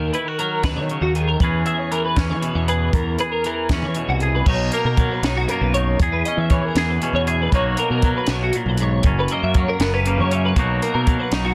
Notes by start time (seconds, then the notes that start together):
Already playing: D#3 A#4
0.13 E4 B4, closed hi-hat
0.25 F#4 A#4
0.39 F#3 A#4, closed hi-hat
0.63 D#2 B2 B4, kick, snare, closed hi-hat
0.76 D#3 C#5
0.89 C#3, closed hi-hat
1.01 D#2 F#4
1.15 D#3 G#4, closed hi-hat
1.28 A#4
1.40 E2 E3 C#4 B4, kick, closed hi-hat
1.45 G#4
1.66 G#4 E5, closed hi-hat
1.79 C#5
1.92 E3 A#4, closed hi-hat
2.05 B4
2.16 E2 C#4, kick, snare, closed hi-hat
2.30 E3 C#5
2.42 B2 B4, closed hi-hat
2.55 E2 C#5
2.68 G#4 B4, closed hi-hat
2.93 E2 A#4, kick, closed hi-hat
3.18 G#4 B4, closed hi-hat
3.32 A#4
3.44 E3 A#4, closed hi-hat
3.69 E2 C#4 B4, kick, snare, closed hi-hat
3.82 E3 C#5
3.94 B2, closed hi-hat
4.08 C2 F#4
4.20 G#4, closed hi-hat
4.35 B4
4.46 B1 B2 D#4 C#5, kick, crash
4.72 A#3 A#4, closed hi-hat
4.85 B2 A#4
4.97 F#3, kick, closed hi-hat
5.12 B4
5.22 B1 D#4 C#5, snare, closed hi-hat
5.36 F#4
5.48 F#2 A#3 A#4, closed hi-hat
5.61 B1 B4
5.74 D#4 C#5, closed hi-hat
5.99 E2 G#4, kick, closed hi-hat
6.12 B4
6.25 C#4 D#5, closed hi-hat
6.37 E3 E5
6.50 E3 C#5, kick, closed hi-hat
6.64 A#4
6.75 E2 G#4, snare, closed hi-hat
6.89 B4
7.02 B2 C#4, closed hi-hat
7.13 E2 C#5
7.27 G#4 E5, closed hi-hat
7.42 B4
7.52 B1 B2 F#3 A#3 D#4 C#5, kick, closed hi-hat
7.56 F#4
7.77 A#3 A#4, closed hi-hat
7.90 B2 A#4
8.02 F#3, kick, closed hi-hat
8.17 B4
8.27 B1 C#5, snare, closed hi-hat
8.31 B2
8.43 F#4
8.53 A#2 A#4, closed hi-hat
8.66 B1 B4
8.77 G#2 C#5, closed hi-hat
9.03 F#1 F#2 C#4, kick, closed hi-hat
9.19 B4
9.28 D#5, closed hi-hat
9.32 A#3
9.43 F#2 E5
9.54 F#3 C#5, kick, closed hi-hat
9.68 A#4
9.80 F#1 B3, snare, closed hi-hat
9.94 C#4 B4
10.06 C#3 A#3, closed hi-hat
10.18 F#2 C#5
10.31 C#4 E5, closed hi-hat
10.45 B4
10.56 B1 B2 F#3 A#3 D#4 C#5, kick, closed hi-hat
10.60 F#4
10.82 A#3 A#4, closed hi-hat
10.94 B2 A#4
11.07 F#3, kick, closed hi-hat
11.19 B4
11.32 B1 D#4 C#5, snare, closed hi-hat
11.45 F#4